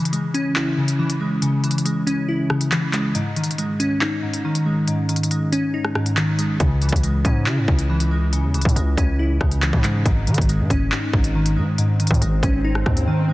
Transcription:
Already playing: synth keys C#3 E3
0.05 closed hi-hat
0.13 synth keys G#3, closed hi-hat
0.34 synth keys C#4, closed hi-hat
0.56 synth keys E4, clap
0.77 synth keys C#3
0.88 closed hi-hat
0.99 synth keys E3
1.10 closed hi-hat
1.20 synth keys G#3
1.42 synth keys C#3, closed hi-hat
1.64 synth keys E3, closed hi-hat
1.71 closed hi-hat
1.78 closed hi-hat
1.85 synth keys G#3, closed hi-hat
2.07 synth keys C#4, closed hi-hat
2.28 synth keys E4
2.50 synth keys C#3, cross-stick
2.61 closed hi-hat
2.72 synth keys E3, clap, closed hi-hat
2.93 synth keys G#3, clap, closed hi-hat
3.15 synth keys G#2, closed hi-hat
3.36 synth keys D#3, closed hi-hat
3.44 closed hi-hat
3.51 closed hi-hat
3.58 synth keys G#3, closed hi-hat
3.80 synth keys C#4, closed hi-hat
4.01 synth keys D#4, clap
4.23 synth keys G#2
4.33 closed hi-hat
4.45 synth keys D#3
4.55 closed hi-hat
4.66 synth keys G#3
4.88 synth keys G#2, closed hi-hat
5.09 synth keys D#3, closed hi-hat
5.16 closed hi-hat
5.23 closed hi-hat
5.31 synth keys G#3, closed hi-hat
5.52 synth keys C#4, closed hi-hat
5.74 synth keys D#4
5.85 cross-stick
5.95 synth keys G#2, cross-stick
6.06 closed hi-hat
6.17 synth keys D#3, clap, closed hi-hat
6.38 synth keys G#3, closed hi-hat
6.60 808-style bass C#2, synth keys C#3, kick, closed hi-hat
6.82 synth keys E3, closed hi-hat
6.89 808-style bass C#2, kick, closed hi-hat
6.96 closed hi-hat
7.03 synth keys G#3, closed hi-hat
7.25 808-style bass G#2, synth keys C#4, kick, closed hi-hat
7.46 808-style bass C#3, synth keys E4, clap
7.57 808-style bass G#2
7.68 808-style bass C#2, synth keys C#3, kick
7.79 closed hi-hat
7.90 synth keys E3
8.00 closed hi-hat
8.11 synth keys G#3
8.33 synth keys C#3, closed hi-hat
8.44 808-style bass E2
8.54 808-style bass C#2, synth keys E3, closed hi-hat
8.61 808-style bass G#2, kick, closed hi-hat
8.69 closed hi-hat
8.76 808-style bass C#2, synth keys G#3, closed hi-hat
8.97 808-style bass C#2, synth keys C#4, kick, closed hi-hat
9.19 synth keys E4
9.41 808-style bass C#2, synth keys C#3, kick, cross-stick
9.51 closed hi-hat
9.62 synth keys E3, clap, closed hi-hat
9.73 808-style bass G#2, kick
9.84 synth keys G#3, clap, closed hi-hat
10.05 808-style bass G#1, synth keys G#2, kick, closed hi-hat, swell
10.27 808-style bass D#3, synth keys D#3, closed hi-hat
10.34 808-style bass G#1, kick, closed hi-hat
10.41 closed hi-hat
10.49 synth keys G#3, closed hi-hat
10.59 808-style bass G#2
10.70 808-style bass F#1, synth keys C#4, kick, closed hi-hat
10.92 synth keys D#4, clap
11.13 808-style bass G#1, synth keys G#2, kick
11.24 closed hi-hat
11.35 synth keys D#3
11.46 closed hi-hat
11.56 808-style bass G#2, synth keys G#3
11.78 synth keys G#2, closed hi-hat
12.00 synth keys D#3, closed hi-hat
12.07 808-style bass G#2, kick, closed hi-hat
12.14 closed hi-hat
12.21 808-style bass G#1, synth keys G#3, closed hi-hat
12.43 808-style bass G#1, synth keys C#4, kick, closed hi-hat
12.64 synth keys D#4
12.75 cross-stick
12.86 808-style bass D#2, synth keys G#2, kick, cross-stick
12.97 closed hi-hat
13.07 synth keys D#3
13.29 synth keys G#3

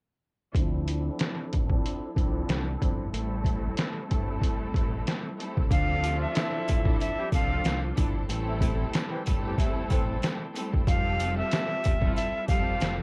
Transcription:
0.54 fingered electric bass D2, string section F3 C4 D4 E4 A4, kick, closed hi-hat
0.88 closed hi-hat
1.19 snare, closed hi-hat
1.53 fingered electric bass A1, kick, closed hi-hat
1.67 string section F3 C4 D4 E4 A4, kick
1.86 closed hi-hat
2.16 fingered electric bass C2, string section F3 C4 D4 E4 A4, kick, closed hi-hat
2.48 fingered electric bass C2, snare, closed hi-hat
2.78 string section F3 C4 D4 E4 A4
2.82 fingered electric bass G1, kick, closed hi-hat
3.13 fingered electric bass A1, string section G3 A3 C4 E4 A4, closed hi-hat
3.45 kick, closed hi-hat
3.77 snare, closed hi-hat
4.07 string section G3 A3 C4 E4 A4
4.11 fingered electric bass G1, kick, closed hi-hat
4.42 kick, closed hi-hat
4.74 fingered electric bass A1, kick, closed hi-hat
5.07 snare, closed hi-hat
5.39 string section G3 A3 C4 E4 A4, closed hi-hat
5.57 fingered electric bass C2, kick
5.71 fingered electric bass D2, string section F3 C4 D4 F4 A4, tonewheel organ F3 D5 C6, flute F5, kick, closed hi-hat, sleigh bells
6.03 horn section C3 A3 F4, closed hi-hat, sleigh bells
6.21 flute E5
6.34 horn section F3 E4 A4, snare, closed hi-hat, sleigh bells
6.68 fingered electric bass A1, kick, closed hi-hat, sleigh bells
6.84 string section F3 C4 D4 E4 A4, kick
7.00 flute E5, closed hi-hat, sleigh bells
7.18 horn section G3 E4 G4
7.32 fingered electric bass C2, string section F3 C4 D4 F4 A4, flute F5, kick, closed hi-hat, sleigh bells
7.51 horn section C3 A3 F4
7.64 fingered electric bass C2, snare, closed hi-hat, sleigh bells
7.94 fingered electric bass G1, string section F3 C4 D4 E4 A4, kick, sleigh bells
7.98 closed hi-hat
8.29 fingered electric bass A1, string section G3 A3 C4 E4 A4, tonewheel organ G5 A5, closed hi-hat, sleigh bells
8.49 horn section C3 A3 E4
8.61 horn section C3 A3 E4, kick, closed hi-hat, sleigh bells
8.94 snare, closed hi-hat, sleigh bells
9.11 horn section E3 C4 G4
9.23 string section G3 A3 C4 E4 A4, closed hi-hat, sleigh bells
9.28 fingered electric bass G1, kick
9.47 horn section E3 C4 G4
9.58 horn section C3 A3 E4, kick, closed hi-hat, sleigh bells
9.90 fingered electric bass A1, horn section E3 C4 A4, kick, closed hi-hat, sleigh bells
10.22 snare, closed hi-hat, sleigh bells
10.55 string section G3 A3 C4 E4 A4, closed hi-hat, sleigh bells
10.73 fingered electric bass G1, kick
10.85 fingered electric bass F1, string section G3 C4 F4 G4 A4, flute F5, tonewheel organ E6, kick, closed hi-hat, sleigh bells
11.20 closed hi-hat, sleigh bells
11.37 flute E5
11.51 snare, closed hi-hat, sleigh bells
11.84 fingered electric bass E1, kick, closed hi-hat, sleigh bells
12.00 string section G3 C4 E4 F4 A4, kick
12.16 flute E5, closed hi-hat, sleigh bells
12.48 fingered electric bass F1, string section G3 C4 F4 G4 A4, flute F5, kick, closed hi-hat, sleigh bells
12.80 fingered electric bass F1, snare, closed hi-hat, sleigh bells

